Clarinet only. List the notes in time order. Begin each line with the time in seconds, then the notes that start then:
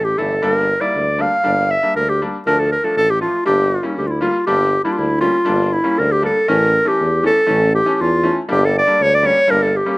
0.04 G4
0.18 A4
0.44 A#4
0.81 D5
1.21 F5
1.71 E5
1.96 A#4
2.09 G4
2.46 A#4
2.59 A4
2.72 A#4
2.84 A4
2.97 A4
3.10 G4
3.21 F4
3.46 G4
3.97 G4
4.07 E4 F4
4.21 F4
4.47 G4
4.84 E4
4.92 F4
4.98 E4
5.21 F4
5.73 E4
5.99 A#4
6.12 G4
6.25 A4
6.49 A#4
6.88 G4
7.26 A4
7.75 G4
7.95 G4
8.01 F4
8.51 G4
8.65 A4
8.78 D5
9.02 C#5
9.15 D5
9.26 C#5
9.50 A#4
9.63 A4
9.76 G4